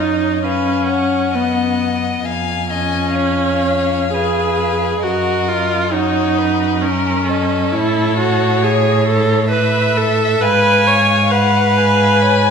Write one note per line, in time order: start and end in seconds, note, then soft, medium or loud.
0.00 2.21 F#2 soft
0.00 0.44 D#4 soft
0.00 0.45 C#5 soft
0.00 0.46 D#5 soft
0.44 1.36 C#4 medium
0.44 0.90 B4 soft
0.44 0.89 F5 soft
0.88 1.34 C#5 soft
0.88 2.23 F#5 soft
1.34 2.26 B3 soft
1.34 2.27 D#5 soft
2.25 5.00 F2 soft
2.25 2.71 F5 soft
2.25 2.70 G#5 soft
2.70 4.09 C#4 medium
2.70 3.17 D#5 soft
2.70 3.15 G#5 soft
3.16 4.16 C#5 soft
3.16 5.00 F5 soft
4.13 5.05 G#4 medium
4.13 5.03 B4 soft
5.02 7.74 F#2 medium
5.02 5.49 F#4 medium
5.02 5.95 A#4 soft
5.02 5.93 D#5 soft
5.48 5.94 F4 medium
5.92 6.83 D#4 medium
5.92 6.85 F#4 soft
5.92 6.40 C#5 soft
6.38 6.85 B4 soft
6.81 7.73 C#4 medium
6.81 7.26 A#4 soft
6.81 7.30 A#4 medium
7.27 8.65 A4 soft
7.27 7.75 D#5 soft
7.72 10.41 A2 medium
7.72 8.16 E4 medium
7.72 9.52 C#5 soft
8.17 8.64 F#4 medium
8.63 9.07 G#4 medium
8.63 9.50 C#5 soft
9.07 9.50 A4 medium
9.51 9.99 B4 medium
9.51 10.44 E5 soft
9.97 10.43 A4 medium
10.41 12.51 G#2 medium
10.41 10.89 B4 medium
10.41 11.33 F5 soft
10.41 11.31 G#5 medium
10.87 11.33 C#5 medium
11.31 12.51 B4 medium
11.31 12.23 F5 medium
11.31 11.79 F#5 soft
11.78 12.51 G#5 soft
12.22 12.51 C#5 soft